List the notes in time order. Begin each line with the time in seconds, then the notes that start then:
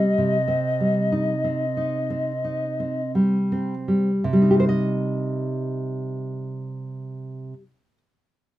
Already playing: C3 G3 C5 D#5
0.18 C3
0.48 C4
0.80 G3
1.12 D#4
1.44 C4
1.77 D#4
2.10 C4
2.44 D#4
2.80 C4
3.15 G3
3.52 C4
3.88 G3
4.24 C3
4.33 G3
4.42 D#4
4.51 G4
4.60 C5
4.69 D#5